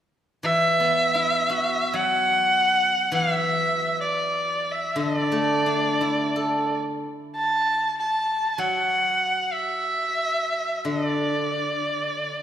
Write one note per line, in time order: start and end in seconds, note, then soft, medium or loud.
0.43 2.51 E3 soft
0.43 1.96 E5 medium
0.80 2.18 B3 soft
1.15 2.52 E4 soft
1.50 2.86 F#4 soft
1.94 4.00 F#3 soft
1.94 3.16 F#5 medium
3.12 5.17 E3 soft
3.12 3.34 F5 medium
3.34 4.00 E5 medium
4.01 4.73 D5 medium
4.71 5.01 E5 medium
4.96 7.03 D3 soft
4.96 5.18 D#5 medium
5.18 6.79 D5 medium
5.32 6.70 A3 soft
5.66 7.04 D4 soft
6.01 7.39 E4 soft
6.36 7.75 A4 soft
7.37 7.94 A5 medium
8.00 8.61 A5 medium
8.58 10.72 F#3 soft
8.58 9.54 F#5 medium
9.53 10.88 E5 medium
10.85 12.43 D3 soft
10.85 11.06 D#5 medium
11.06 12.43 D5 medium